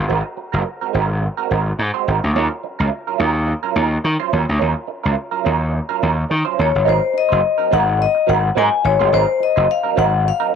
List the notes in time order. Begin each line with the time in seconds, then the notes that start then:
0.08 G#1 G#3 C4 F#4 A#4
0.24 muted clean electric guitar stroke
0.37 muted clean electric guitar stroke
0.52 F#1 G#3 C4 F#4 A#4
0.65 muted clean electric guitar stroke
0.81 G#3 C4 F#4 A#4
0.93 G#1 G#3 C4 F#4 A#4
1.10 muted clean electric guitar stroke
1.22 muted clean electric guitar stroke
1.37 G#3 C4 F#4 A#4
1.49 G#1 G#3 C4 F#4 A#4
1.66 muted clean electric guitar stroke
1.79 G#2, muted clean electric guitar stroke
1.94 G#3 C4 F#4 C5
2.07 G#1 G#3 C4 F#4 A#4
2.23 D2, muted clean electric guitar stroke
2.35 D#2 F#3 C#4 F4 A#4
2.52 muted clean electric guitar stroke
2.64 muted clean electric guitar stroke
2.79 C#2 F#3 C#4 F4 A#4
2.91 muted clean electric guitar stroke
3.07 F#3 C#4 F4 A#4
3.18 D#2 F#3 C#4 F4 A#4
3.35 muted clean electric guitar stroke
3.47 muted clean electric guitar stroke
3.63 F#3 C#4 F4 A#4
3.76 D#2 F#3 C#4 F4 A#4
3.92 muted clean electric guitar stroke
4.04 D#3, muted clean electric guitar stroke
4.20 F#3 C#4 F4 C5
4.32 D#2 F#3 C#4 F4 A#4
4.48 D2, muted clean electric guitar stroke
4.59 D#2 F#3 C#4 F4 A#4
4.76 muted clean electric guitar stroke
4.87 muted clean electric guitar stroke
5.04 C#2 F#3 C#4 F4 A#4
5.16 muted clean electric guitar stroke
5.31 F#3 C#4 F4 A#4
5.44 D#2 F#3 C#4 F4 A#4
5.60 muted clean electric guitar stroke
5.72 muted clean electric guitar stroke
5.89 F#3 C#4 F4 A#4
6.01 D#2 F#3 C#4 F4 A#4
6.17 muted clean electric guitar stroke
6.30 D#3, muted clean electric guitar stroke
6.45 F#3 C#4 F4 C5
6.57 D#2 F#3 C#4 F4 A#4
6.62 C#5
6.73 G1, muted clean electric guitar stroke
6.85 G#1 F#3 C4 D#4 A#4
6.89 C5
7.01 muted clean electric guitar stroke
7.14 muted clean electric guitar stroke
7.18 D#5
7.29 F#1 F#3 C4 D#4 C5
7.42 muted clean electric guitar stroke
7.58 F#3 C4 D#4 A#4
7.70 G#1 F#3 C4 D#4 A#4 F#5
7.86 muted clean electric guitar stroke
7.98 D#5, muted clean electric guitar stroke
8.15 muted clean electric guitar stroke
8.27 G#1 F#3 C4 D#4 A#4 F#5
8.43 muted clean electric guitar stroke
8.55 G#2 F#3 C4 D#4 A#4 G#5
8.72 muted clean electric guitar stroke
8.84 G#1 C#5, muted clean electric guitar stroke
8.99 G1 F#3 C4 D#4 C5
9.12 G#1 F#3 C4 D#4 A#4 C5
9.28 muted clean electric guitar stroke
9.40 D#5, muted clean electric guitar stroke
9.56 F#1 F#3 C4 D#4 C5
9.68 F5, muted clean electric guitar stroke
9.83 F#3 C4 D#4 A#4
9.95 G#1 F#3 C4 D#4 A#4 F#5
10.12 muted clean electric guitar stroke
10.24 muted clean electric guitar stroke
10.28 F5
10.40 F#3 C4 D#4 A#4
10.52 muted clean electric guitar stroke